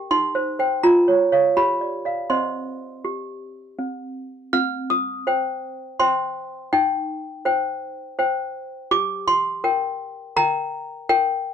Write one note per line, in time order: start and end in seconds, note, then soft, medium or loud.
0.00 0.11 G4 soft
0.11 0.34 D#4 medium
0.11 0.81 C6 medium
0.35 0.58 C5 medium
0.59 0.77 C5 soft
0.59 0.77 G5 medium
0.83 1.07 F4 medium
0.83 1.54 A#5 medium
1.08 1.31 C#5 soft
1.32 1.50 C#5 soft
1.32 1.50 F5 soft
1.57 1.81 G4 medium
1.57 2.28 B5 medium
1.81 2.04 D5 soft
2.05 2.23 D5 soft
2.05 2.24 F5 soft
2.30 2.82 C4 soft
2.30 2.90 C5 soft
2.30 2.90 D#5 soft
2.30 3.75 C6 medium
3.05 3.57 G4 soft
3.79 4.31 C4 soft
4.53 5.25 C4 medium
4.53 4.89 F6 loud
4.90 5.96 D#6 medium
5.27 5.80 C5 medium
5.27 5.80 G5 medium
6.00 6.52 C5 soft
6.00 6.53 G5 medium
6.00 6.70 C6 medium
6.73 7.43 D#4 medium
6.73 7.45 G5 medium
7.45 7.98 C5 medium
7.45 7.98 G5 medium
8.19 8.71 C5 medium
8.19 8.71 G5 medium
8.91 9.62 G4 medium
8.91 9.26 D6 loud
9.28 10.32 C6 loud
9.64 10.16 A#4 medium
9.64 10.16 G5 medium
10.36 10.89 A#4 medium
10.36 10.89 G5 medium
10.36 11.06 A#5 loud
11.09 11.54 A#4 medium
11.09 11.54 G5 medium